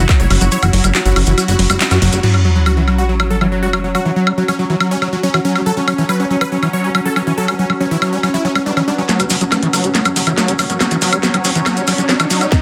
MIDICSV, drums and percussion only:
0, 0, Header, 1, 2, 480
1, 0, Start_track
1, 0, Tempo, 428571
1, 581, Time_signature, 4, 2, 24, 8
1, 14132, End_track
2, 0, Start_track
2, 0, Title_t, "Drums"
2, 101, Note_on_c, 9, 36, 112
2, 102, Note_on_c, 9, 39, 113
2, 102, Note_on_c, 9, 42, 66
2, 102, Note_on_c, 9, 70, 62
2, 102, Note_on_c, 9, 76, 81
2, 213, Note_off_c, 9, 36, 0
2, 214, Note_off_c, 9, 39, 0
2, 214, Note_off_c, 9, 42, 0
2, 214, Note_off_c, 9, 70, 0
2, 214, Note_off_c, 9, 76, 0
2, 221, Note_on_c, 9, 42, 70
2, 222, Note_on_c, 9, 70, 36
2, 333, Note_off_c, 9, 42, 0
2, 334, Note_off_c, 9, 70, 0
2, 341, Note_on_c, 9, 46, 91
2, 341, Note_on_c, 9, 76, 43
2, 453, Note_off_c, 9, 46, 0
2, 453, Note_off_c, 9, 76, 0
2, 460, Note_on_c, 9, 70, 74
2, 461, Note_on_c, 9, 42, 69
2, 572, Note_off_c, 9, 70, 0
2, 573, Note_off_c, 9, 42, 0
2, 576, Note_on_c, 9, 70, 61
2, 581, Note_on_c, 9, 42, 73
2, 688, Note_off_c, 9, 70, 0
2, 693, Note_off_c, 9, 42, 0
2, 699, Note_on_c, 9, 70, 42
2, 701, Note_on_c, 9, 42, 71
2, 701, Note_on_c, 9, 76, 80
2, 811, Note_off_c, 9, 70, 0
2, 813, Note_off_c, 9, 42, 0
2, 813, Note_off_c, 9, 76, 0
2, 821, Note_on_c, 9, 46, 108
2, 933, Note_off_c, 9, 46, 0
2, 938, Note_on_c, 9, 70, 81
2, 941, Note_on_c, 9, 42, 74
2, 941, Note_on_c, 9, 76, 40
2, 1050, Note_off_c, 9, 70, 0
2, 1053, Note_off_c, 9, 42, 0
2, 1053, Note_off_c, 9, 76, 0
2, 1061, Note_on_c, 9, 39, 118
2, 1061, Note_on_c, 9, 42, 69
2, 1062, Note_on_c, 9, 70, 69
2, 1173, Note_off_c, 9, 39, 0
2, 1173, Note_off_c, 9, 42, 0
2, 1174, Note_off_c, 9, 70, 0
2, 1182, Note_on_c, 9, 42, 72
2, 1185, Note_on_c, 9, 70, 38
2, 1294, Note_off_c, 9, 42, 0
2, 1297, Note_off_c, 9, 70, 0
2, 1302, Note_on_c, 9, 46, 88
2, 1302, Note_on_c, 9, 76, 75
2, 1414, Note_off_c, 9, 46, 0
2, 1414, Note_off_c, 9, 76, 0
2, 1414, Note_on_c, 9, 70, 77
2, 1422, Note_on_c, 9, 42, 72
2, 1526, Note_off_c, 9, 70, 0
2, 1534, Note_off_c, 9, 42, 0
2, 1542, Note_on_c, 9, 42, 71
2, 1542, Note_on_c, 9, 76, 40
2, 1549, Note_on_c, 9, 70, 71
2, 1654, Note_off_c, 9, 42, 0
2, 1654, Note_off_c, 9, 76, 0
2, 1661, Note_off_c, 9, 70, 0
2, 1662, Note_on_c, 9, 42, 70
2, 1665, Note_on_c, 9, 70, 40
2, 1774, Note_off_c, 9, 42, 0
2, 1777, Note_off_c, 9, 70, 0
2, 1781, Note_on_c, 9, 46, 104
2, 1893, Note_off_c, 9, 46, 0
2, 1901, Note_on_c, 9, 42, 69
2, 1901, Note_on_c, 9, 76, 79
2, 1902, Note_on_c, 9, 70, 78
2, 2013, Note_off_c, 9, 42, 0
2, 2013, Note_off_c, 9, 76, 0
2, 2014, Note_off_c, 9, 70, 0
2, 2021, Note_on_c, 9, 39, 120
2, 2021, Note_on_c, 9, 42, 68
2, 2025, Note_on_c, 9, 70, 66
2, 2133, Note_off_c, 9, 39, 0
2, 2133, Note_off_c, 9, 42, 0
2, 2136, Note_off_c, 9, 70, 0
2, 2136, Note_on_c, 9, 70, 41
2, 2141, Note_on_c, 9, 39, 38
2, 2141, Note_on_c, 9, 42, 73
2, 2141, Note_on_c, 9, 76, 41
2, 2248, Note_off_c, 9, 70, 0
2, 2253, Note_off_c, 9, 39, 0
2, 2253, Note_off_c, 9, 42, 0
2, 2253, Note_off_c, 9, 76, 0
2, 2261, Note_on_c, 9, 46, 87
2, 2373, Note_off_c, 9, 46, 0
2, 2381, Note_on_c, 9, 42, 70
2, 2381, Note_on_c, 9, 70, 72
2, 2493, Note_off_c, 9, 42, 0
2, 2493, Note_off_c, 9, 70, 0
2, 2501, Note_on_c, 9, 49, 81
2, 2613, Note_off_c, 9, 49, 0
2, 2621, Note_on_c, 9, 76, 38
2, 2733, Note_off_c, 9, 76, 0
2, 2981, Note_on_c, 9, 76, 72
2, 3093, Note_off_c, 9, 76, 0
2, 3221, Note_on_c, 9, 76, 37
2, 3333, Note_off_c, 9, 76, 0
2, 3581, Note_on_c, 9, 76, 72
2, 3693, Note_off_c, 9, 76, 0
2, 3821, Note_on_c, 9, 76, 37
2, 3933, Note_off_c, 9, 76, 0
2, 4181, Note_on_c, 9, 76, 74
2, 4293, Note_off_c, 9, 76, 0
2, 4422, Note_on_c, 9, 76, 37
2, 4534, Note_off_c, 9, 76, 0
2, 4782, Note_on_c, 9, 76, 74
2, 4894, Note_off_c, 9, 76, 0
2, 5022, Note_on_c, 9, 76, 36
2, 5134, Note_off_c, 9, 76, 0
2, 5382, Note_on_c, 9, 76, 74
2, 5494, Note_off_c, 9, 76, 0
2, 5622, Note_on_c, 9, 76, 36
2, 5734, Note_off_c, 9, 76, 0
2, 5982, Note_on_c, 9, 76, 73
2, 6094, Note_off_c, 9, 76, 0
2, 6222, Note_on_c, 9, 76, 34
2, 6334, Note_off_c, 9, 76, 0
2, 6582, Note_on_c, 9, 76, 78
2, 6694, Note_off_c, 9, 76, 0
2, 6822, Note_on_c, 9, 76, 36
2, 6934, Note_off_c, 9, 76, 0
2, 7181, Note_on_c, 9, 76, 78
2, 7293, Note_off_c, 9, 76, 0
2, 7421, Note_on_c, 9, 76, 36
2, 7533, Note_off_c, 9, 76, 0
2, 7781, Note_on_c, 9, 76, 74
2, 7893, Note_off_c, 9, 76, 0
2, 8021, Note_on_c, 9, 76, 38
2, 8133, Note_off_c, 9, 76, 0
2, 8381, Note_on_c, 9, 76, 81
2, 8493, Note_off_c, 9, 76, 0
2, 8622, Note_on_c, 9, 76, 40
2, 8734, Note_off_c, 9, 76, 0
2, 8982, Note_on_c, 9, 76, 78
2, 9094, Note_off_c, 9, 76, 0
2, 9221, Note_on_c, 9, 76, 41
2, 9333, Note_off_c, 9, 76, 0
2, 9581, Note_on_c, 9, 76, 84
2, 9693, Note_off_c, 9, 76, 0
2, 9821, Note_on_c, 9, 76, 40
2, 9933, Note_off_c, 9, 76, 0
2, 10181, Note_on_c, 9, 38, 48
2, 10181, Note_on_c, 9, 42, 67
2, 10181, Note_on_c, 9, 70, 50
2, 10293, Note_off_c, 9, 38, 0
2, 10293, Note_off_c, 9, 42, 0
2, 10293, Note_off_c, 9, 70, 0
2, 10301, Note_on_c, 9, 42, 70
2, 10301, Note_on_c, 9, 70, 38
2, 10301, Note_on_c, 9, 76, 38
2, 10413, Note_off_c, 9, 42, 0
2, 10413, Note_off_c, 9, 70, 0
2, 10413, Note_off_c, 9, 76, 0
2, 10415, Note_on_c, 9, 70, 92
2, 10421, Note_on_c, 9, 46, 103
2, 10527, Note_off_c, 9, 70, 0
2, 10533, Note_off_c, 9, 46, 0
2, 10537, Note_on_c, 9, 70, 38
2, 10541, Note_on_c, 9, 42, 66
2, 10649, Note_off_c, 9, 70, 0
2, 10653, Note_off_c, 9, 42, 0
2, 10661, Note_on_c, 9, 38, 48
2, 10661, Note_on_c, 9, 42, 67
2, 10661, Note_on_c, 9, 76, 74
2, 10663, Note_on_c, 9, 70, 49
2, 10773, Note_off_c, 9, 38, 0
2, 10773, Note_off_c, 9, 42, 0
2, 10773, Note_off_c, 9, 76, 0
2, 10775, Note_off_c, 9, 70, 0
2, 10781, Note_on_c, 9, 42, 67
2, 10893, Note_off_c, 9, 42, 0
2, 10901, Note_on_c, 9, 46, 94
2, 10901, Note_on_c, 9, 76, 37
2, 10907, Note_on_c, 9, 70, 101
2, 11013, Note_off_c, 9, 46, 0
2, 11013, Note_off_c, 9, 76, 0
2, 11019, Note_off_c, 9, 70, 0
2, 11020, Note_on_c, 9, 70, 36
2, 11021, Note_on_c, 9, 42, 70
2, 11132, Note_off_c, 9, 70, 0
2, 11133, Note_off_c, 9, 42, 0
2, 11140, Note_on_c, 9, 70, 56
2, 11141, Note_on_c, 9, 38, 52
2, 11141, Note_on_c, 9, 42, 70
2, 11252, Note_off_c, 9, 70, 0
2, 11253, Note_off_c, 9, 38, 0
2, 11253, Note_off_c, 9, 42, 0
2, 11254, Note_on_c, 9, 70, 34
2, 11261, Note_on_c, 9, 42, 69
2, 11261, Note_on_c, 9, 76, 73
2, 11366, Note_off_c, 9, 70, 0
2, 11373, Note_off_c, 9, 42, 0
2, 11373, Note_off_c, 9, 76, 0
2, 11381, Note_on_c, 9, 46, 107
2, 11384, Note_on_c, 9, 70, 99
2, 11493, Note_off_c, 9, 46, 0
2, 11496, Note_off_c, 9, 70, 0
2, 11496, Note_on_c, 9, 70, 38
2, 11501, Note_on_c, 9, 42, 68
2, 11501, Note_on_c, 9, 76, 38
2, 11608, Note_off_c, 9, 70, 0
2, 11613, Note_off_c, 9, 42, 0
2, 11613, Note_off_c, 9, 76, 0
2, 11621, Note_on_c, 9, 38, 54
2, 11621, Note_on_c, 9, 42, 65
2, 11628, Note_on_c, 9, 70, 53
2, 11733, Note_off_c, 9, 38, 0
2, 11733, Note_off_c, 9, 42, 0
2, 11737, Note_off_c, 9, 70, 0
2, 11737, Note_on_c, 9, 70, 32
2, 11741, Note_on_c, 9, 42, 71
2, 11849, Note_off_c, 9, 70, 0
2, 11853, Note_off_c, 9, 42, 0
2, 11861, Note_on_c, 9, 46, 92
2, 11861, Note_on_c, 9, 76, 80
2, 11862, Note_on_c, 9, 70, 89
2, 11973, Note_off_c, 9, 46, 0
2, 11973, Note_off_c, 9, 76, 0
2, 11974, Note_off_c, 9, 70, 0
2, 11979, Note_on_c, 9, 70, 39
2, 11981, Note_on_c, 9, 42, 69
2, 12091, Note_off_c, 9, 70, 0
2, 12093, Note_off_c, 9, 42, 0
2, 12101, Note_on_c, 9, 38, 56
2, 12101, Note_on_c, 9, 42, 66
2, 12101, Note_on_c, 9, 76, 37
2, 12110, Note_on_c, 9, 70, 50
2, 12213, Note_off_c, 9, 38, 0
2, 12213, Note_off_c, 9, 42, 0
2, 12213, Note_off_c, 9, 76, 0
2, 12220, Note_off_c, 9, 70, 0
2, 12220, Note_on_c, 9, 70, 39
2, 12221, Note_on_c, 9, 42, 67
2, 12332, Note_off_c, 9, 70, 0
2, 12333, Note_off_c, 9, 42, 0
2, 12339, Note_on_c, 9, 70, 91
2, 12341, Note_on_c, 9, 46, 109
2, 12451, Note_off_c, 9, 70, 0
2, 12453, Note_off_c, 9, 46, 0
2, 12461, Note_on_c, 9, 42, 67
2, 12461, Note_on_c, 9, 70, 40
2, 12461, Note_on_c, 9, 76, 79
2, 12573, Note_off_c, 9, 42, 0
2, 12573, Note_off_c, 9, 70, 0
2, 12573, Note_off_c, 9, 76, 0
2, 12581, Note_on_c, 9, 38, 59
2, 12581, Note_on_c, 9, 42, 66
2, 12581, Note_on_c, 9, 70, 53
2, 12693, Note_off_c, 9, 38, 0
2, 12693, Note_off_c, 9, 42, 0
2, 12693, Note_off_c, 9, 70, 0
2, 12701, Note_on_c, 9, 42, 65
2, 12701, Note_on_c, 9, 76, 38
2, 12813, Note_off_c, 9, 42, 0
2, 12813, Note_off_c, 9, 76, 0
2, 12818, Note_on_c, 9, 70, 90
2, 12821, Note_on_c, 9, 46, 96
2, 12930, Note_off_c, 9, 70, 0
2, 12933, Note_off_c, 9, 46, 0
2, 12941, Note_on_c, 9, 42, 69
2, 12941, Note_on_c, 9, 70, 43
2, 13053, Note_off_c, 9, 42, 0
2, 13053, Note_off_c, 9, 70, 0
2, 13061, Note_on_c, 9, 38, 66
2, 13061, Note_on_c, 9, 42, 66
2, 13061, Note_on_c, 9, 76, 75
2, 13062, Note_on_c, 9, 70, 59
2, 13173, Note_off_c, 9, 38, 0
2, 13173, Note_off_c, 9, 42, 0
2, 13173, Note_off_c, 9, 76, 0
2, 13174, Note_off_c, 9, 70, 0
2, 13181, Note_on_c, 9, 42, 62
2, 13181, Note_on_c, 9, 70, 40
2, 13293, Note_off_c, 9, 42, 0
2, 13293, Note_off_c, 9, 70, 0
2, 13298, Note_on_c, 9, 70, 92
2, 13301, Note_on_c, 9, 46, 110
2, 13301, Note_on_c, 9, 76, 38
2, 13410, Note_off_c, 9, 70, 0
2, 13413, Note_off_c, 9, 46, 0
2, 13413, Note_off_c, 9, 76, 0
2, 13421, Note_on_c, 9, 42, 69
2, 13431, Note_on_c, 9, 70, 46
2, 13533, Note_off_c, 9, 42, 0
2, 13541, Note_on_c, 9, 38, 69
2, 13541, Note_on_c, 9, 42, 65
2, 13543, Note_off_c, 9, 70, 0
2, 13549, Note_on_c, 9, 70, 51
2, 13653, Note_off_c, 9, 38, 0
2, 13653, Note_off_c, 9, 42, 0
2, 13661, Note_off_c, 9, 70, 0
2, 13661, Note_on_c, 9, 42, 67
2, 13661, Note_on_c, 9, 76, 77
2, 13663, Note_on_c, 9, 70, 36
2, 13773, Note_off_c, 9, 42, 0
2, 13773, Note_off_c, 9, 76, 0
2, 13775, Note_off_c, 9, 70, 0
2, 13781, Note_on_c, 9, 46, 98
2, 13781, Note_on_c, 9, 70, 92
2, 13893, Note_off_c, 9, 46, 0
2, 13893, Note_off_c, 9, 70, 0
2, 13901, Note_on_c, 9, 42, 67
2, 13901, Note_on_c, 9, 76, 36
2, 13905, Note_on_c, 9, 70, 42
2, 14013, Note_off_c, 9, 42, 0
2, 14013, Note_off_c, 9, 76, 0
2, 14017, Note_off_c, 9, 70, 0
2, 14021, Note_on_c, 9, 36, 127
2, 14021, Note_on_c, 9, 38, 74
2, 14021, Note_on_c, 9, 42, 68
2, 14025, Note_on_c, 9, 70, 55
2, 14132, Note_off_c, 9, 36, 0
2, 14132, Note_off_c, 9, 38, 0
2, 14132, Note_off_c, 9, 42, 0
2, 14132, Note_off_c, 9, 70, 0
2, 14132, End_track
0, 0, End_of_file